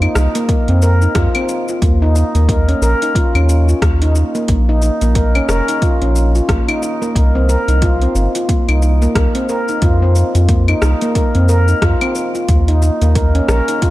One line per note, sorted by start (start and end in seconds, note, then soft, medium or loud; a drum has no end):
0.02 0.15 D#4 medium
0.02 closed hi-hat soft
0.02 claves medium
0.15 0.28 C2 loud
0.15 0.33 D#4 medium
0.15 cross-stick medium
0.15 shaker medium
0.35 0.48 A#3 loud
0.35 closed hi-hat soft
0.35 shaker soft
0.49 0.68 A#4 medium
0.49 kick loud
0.49 closed hi-hat medium
0.49 shaker soft
0.68 1.08 F2 loud
0.68 0.77 C4 medium
0.68 closed hi-hat soft
0.82 1.01 A#4 medium
0.82 shaker medium
1.02 1.15 D#4 medium
1.02 shaker soft
1.15 1.28 F2 medium
1.15 1.27 F4 medium
1.15 kick loud
1.15 cross-stick medium
1.15 closed hi-hat medium
1.15 shaker soft
1.35 1.48 C4 loud
1.35 closed hi-hat soft
1.35 claves medium
1.49 1.67 C4 medium
1.49 shaker medium
1.68 1.81 F4 medium
1.68 shaker soft
1.82 2.24 D#2 medium
1.82 2.00 A#3 medium
1.82 kick loud
1.82 closed hi-hat medium
1.82 shaker soft
2.02 2.15 D#4 loud
2.15 2.33 D#4 medium
2.15 shaker medium
2.35 2.74 D#2 medium
2.35 2.48 A#3 medium
2.35 closed hi-hat soft
2.35 shaker soft
2.49 2.68 A#4 medium
2.49 kick loud
2.49 closed hi-hat medium
2.49 shaker soft
2.68 2.76 C#4 medium
2.68 closed hi-hat soft
2.82 2.95 A#1 loud
2.82 3.01 A#4 loud
2.82 shaker medium
3.02 3.15 D#4 medium
3.02 closed hi-hat soft
3.02 shaker soft
3.15 3.27 F4 medium
3.15 kick loud
3.15 closed hi-hat medium
3.15 shaker soft
3.35 3.74 D#2 loud
3.35 3.48 C#4 medium
3.35 closed hi-hat soft
3.35 claves medium
3.49 3.67 C#4 medium
3.49 shaker medium
3.69 3.81 F4 medium
3.69 shaker soft
3.82 4.24 D#2 medium
3.82 4.00 A#3 medium
3.82 kick loud
3.82 cross-stick medium
3.82 closed hi-hat medium
3.82 shaker soft
4.02 4.14 D#4 loud
4.02 closed hi-hat soft
4.15 4.33 D#4 medium
4.15 shaker medium
4.35 4.47 A#3 medium
4.35 shaker soft
4.48 4.90 A#1 medium
4.48 4.67 A#3 medium
4.48 kick loud
4.48 closed hi-hat medium
4.48 shaker soft
4.69 4.81 D#4 loud
4.82 5.00 D#4 medium
4.82 shaker medium
5.01 5.41 A#1 medium
5.01 5.14 A#3 medium
5.01 closed hi-hat soft
5.01 shaker soft
5.15 5.34 A#4 medium
5.15 kick medium
5.15 closed hi-hat medium
5.15 shaker soft
5.35 5.43 C#4 loud
5.35 closed hi-hat soft
5.35 claves medium
5.49 5.61 F1 loud
5.49 5.68 A#4 medium
5.49 cross-stick medium
5.49 shaker medium
5.68 5.82 D#4 medium
5.68 closed hi-hat soft
5.68 shaker soft
5.82 5.94 F4 loud
5.82 kick loud
5.82 closed hi-hat medium
5.82 shaker soft
6.02 6.41 A#1 loud
6.02 6.15 C#4 medium
6.02 closed hi-hat soft
6.16 6.33 C#4 medium
6.16 shaker medium
6.35 6.48 F4 medium
6.35 shaker soft
6.49 6.61 A#1 medium
6.49 6.67 A#3 medium
6.49 kick loud
6.49 cross-stick medium
6.49 closed hi-hat medium
6.49 shaker soft
6.68 6.81 D#4 loud
6.68 closed hi-hat soft
6.68 claves medium
6.82 7.00 D#4 medium
6.82 shaker medium
7.02 7.14 A#3 medium
7.02 shaker soft
7.15 7.57 C2 medium
7.15 7.34 A#4 medium
7.15 kick medium
7.15 closed hi-hat medium
7.15 shaker soft
7.35 7.43 C4 medium
7.49 7.68 A#4 loud
7.49 shaker medium
7.68 8.07 C2 medium
7.68 7.82 D#4 medium
7.68 closed hi-hat soft
7.68 shaker soft
7.82 7.94 F4 loud
7.82 kick medium
7.82 closed hi-hat medium
7.82 shaker soft
8.02 8.14 C4 medium
8.02 closed hi-hat soft
8.15 8.28 G1 loud
8.15 8.33 C4 medium
8.15 shaker medium
8.35 8.48 F4 medium
8.35 closed hi-hat soft
8.35 shaker soft
8.49 8.67 A#3 medium
8.49 kick loud
8.49 closed hi-hat medium
8.49 shaker soft
8.68 9.08 C2 loud
8.68 8.82 D#4 medium
8.68 closed hi-hat soft
8.68 claves medium
8.82 9.00 D#4 medium
8.82 shaker medium
9.02 9.14 A#3 loud
9.02 shaker soft
9.15 9.28 C2 medium
9.15 9.34 A#4 medium
9.15 kick loud
9.15 cross-stick medium
9.15 closed hi-hat medium
9.15 shaker soft
9.35 9.43 C4 loud
9.35 closed hi-hat soft
9.49 9.68 A#4 medium
9.49 shaker medium
9.68 9.82 D#4 medium
9.68 shaker soft
9.82 10.24 F2 medium
9.82 9.94 F4 loud
9.82 kick loud
9.82 closed hi-hat medium
9.82 shaker soft
10.02 10.15 C4 loud
10.15 10.34 C4 medium
10.15 shaker medium
10.35 10.74 F2 medium
10.35 10.48 F4 medium
10.35 closed hi-hat soft
10.35 shaker soft
10.49 10.67 A#3 medium
10.49 kick medium
10.49 closed hi-hat medium
10.49 shaker soft
10.68 10.81 D#4 medium
10.68 closed hi-hat soft
10.68 claves medium
10.82 10.95 C2 loud
10.82 11.00 D#4 medium
10.82 cross-stick medium
10.82 shaker medium
11.01 11.14 A#3 loud
11.01 closed hi-hat soft
11.01 shaker soft
11.15 11.34 A#4 medium
11.15 kick medium
11.15 closed hi-hat medium
11.15 shaker soft
11.35 11.74 F2 loud
11.35 11.43 C4 medium
11.35 closed hi-hat soft
11.49 11.68 A#4 loud
11.49 shaker medium
11.68 11.81 D#4 medium
11.68 shaker soft
11.82 11.95 F2 medium
11.82 11.93 F4 loud
11.82 kick loud
11.82 cross-stick medium
11.82 closed hi-hat medium
11.82 shaker soft
12.01 12.14 C4 loud
12.01 closed hi-hat soft
12.01 claves medium
12.15 12.33 C4 medium
12.15 shaker medium
12.35 12.47 F4 medium
12.35 shaker soft
12.49 12.90 D#2 medium
12.49 12.66 A#3 medium
12.49 kick loud
12.49 closed hi-hat medium
12.49 shaker soft
12.68 12.81 D#4 loud
12.68 closed hi-hat soft
12.82 13.00 D#4 medium
12.82 shaker medium
13.02 13.41 D#2 medium
13.02 13.14 A#3 medium
13.02 closed hi-hat soft
13.02 shaker soft
13.15 13.34 A#4 medium
13.15 kick medium
13.15 closed hi-hat medium
13.15 shaker soft
13.35 13.43 C#4 loud
13.35 closed hi-hat soft
13.48 13.61 A#1 loud
13.48 13.68 A#4 loud
13.48 cross-stick medium
13.48 shaker medium
13.68 13.82 D#4 medium
13.68 closed hi-hat soft
13.68 shaker soft
13.82 13.90 F4 loud
13.82 kick loud
13.82 closed hi-hat medium
13.82 shaker soft